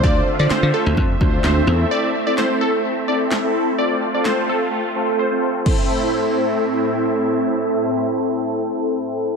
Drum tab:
CC |--------|--------|--------|x-------|
CP |--x---x-|--x---x-|--x-----|--------|
SD |--o---o-|--o---o-|--o-----|--------|
BD |o---oo--|--------|--------|o-------|

CC |--------|
CP |--------|
SD |--------|
BD |--------|